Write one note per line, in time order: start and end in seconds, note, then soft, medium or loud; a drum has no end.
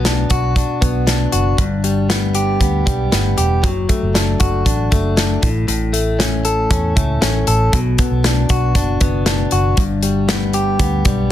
0.00 0.24 B1 medium
0.00 1.58 B2 medium
0.00 0.81 B3 medium
0.05 0.56 D4 medium
0.05 snare loud
0.05 closed hi-hat medium
0.30 0.63 B1 medium
0.30 1.31 F#4 medium
0.30 kick medium
0.30 closed hi-hat medium
0.56 1.06 D4 medium
0.56 kick medium
0.56 closed hi-hat medium
0.81 1.25 B1 medium
0.81 1.63 B3 medium
0.81 kick medium
0.81 closed hi-hat medium
1.07 2.09 D4 medium
1.07 snare medium
1.07 closed hi-hat medium
1.32 1.55 F#1 medium
1.32 1.63 F#4 medium
1.32 closed hi-hat medium
1.58 2.57 G1 medium
1.58 3.63 G2 medium
1.58 kick loud
1.58 closed hi-hat medium
1.84 2.85 G3 medium
1.84 closed hi-hat medium
2.09 2.59 B3 medium
2.09 snare medium
2.09 closed hi-hat medium
2.35 3.36 G4 medium
2.35 closed hi-hat medium
2.60 2.82 D2 medium
2.60 3.11 B3 medium
2.60 kick medium
2.60 closed hi-hat medium
2.86 3.68 G3 medium
2.86 kick medium
2.86 closed hi-hat medium
3.12 3.34 G1 medium
3.12 3.68 B3 medium
3.12 snare medium
3.12 closed hi-hat medium
3.38 3.64 E1 medium
3.38 3.68 G4 medium
3.38 closed hi-hat medium
3.63 3.85 F#1 medium
3.63 5.48 F#3 medium
3.63 kick loud
3.63 closed hi-hat medium
3.89 4.91 A3 medium
3.89 kick medium
3.89 closed hi-hat medium
4.02 4.35 F#1 medium
4.14 4.65 D4 medium
4.14 snare medium
4.14 closed hi-hat medium
4.40 4.62 F#1 medium
4.40 5.48 F#4 medium
4.40 kick medium
4.40 closed hi-hat medium
4.66 4.88 A1 medium
4.66 5.16 D4 medium
4.66 kick medium
4.66 closed hi-hat medium
4.92 5.35 F#1 medium
4.92 5.93 A3 medium
4.92 kick medium
4.92 closed hi-hat medium
5.17 5.48 D4 medium
5.17 snare medium
5.17 closed hi-hat medium
5.42 5.65 A1 medium
5.42 5.67 A2 medium
5.42 kick medium
5.42 closed hi-hat medium
5.68 6.67 A1 medium
5.68 7.73 A2 medium
5.68 closed hi-hat medium
5.93 6.95 A3 medium
5.93 closed hi-hat medium
6.19 6.69 C#4 medium
6.19 snare medium
6.19 closed hi-hat medium
6.45 7.46 A4 medium
6.45 closed hi-hat medium
6.71 6.92 E2 medium
6.71 7.20 C#4 medium
6.71 kick medium
6.71 closed hi-hat medium
6.96 7.18 C#2 medium
6.96 7.78 A3 medium
6.96 kick medium
6.96 closed hi-hat medium
7.21 7.44 A1 medium
7.21 7.78 C#4 medium
7.21 snare medium
7.21 closed hi-hat medium
7.47 7.69 A1 medium
7.47 7.78 A4 medium
7.47 closed hi-hat medium
7.73 7.95 B1 medium
7.73 9.78 B2 medium
7.73 kick loud
7.73 closed hi-hat medium
7.98 9.00 B3 soft
7.98 kick medium
7.98 closed hi-hat medium
8.11 8.44 B1 medium
8.24 8.75 D4 medium
8.24 snare medium
8.24 closed hi-hat medium
8.49 8.72 B1 medium
8.49 9.51 F#4 medium
8.49 kick medium
8.49 closed hi-hat medium
8.75 8.97 F#1 medium
8.75 9.26 D4 medium
8.75 kick medium
8.75 closed hi-hat medium
9.01 9.44 F#1 medium
9.01 9.83 B3 medium
9.01 kick medium
9.01 closed hi-hat medium
9.26 10.28 D4 medium
9.26 snare medium
9.26 closed hi-hat medium
9.51 9.74 F#1 medium
9.51 9.83 F#4 medium
9.51 closed hi-hat medium
9.77 10.76 G1 medium
9.77 11.32 G2 medium
9.77 kick loud
9.77 closed hi-hat medium
10.03 11.04 G3 medium
10.03 closed hi-hat medium
10.28 10.79 B3 medium
10.28 snare loud
10.28 closed hi-hat medium
10.53 11.32 G4 medium
10.53 closed hi-hat medium
10.79 11.02 D2 medium
10.79 11.29 B3 medium
10.79 kick medium
10.79 closed hi-hat medium
11.05 11.27 B1 medium
11.05 11.32 G3 medium
11.05 kick medium
11.05 closed hi-hat medium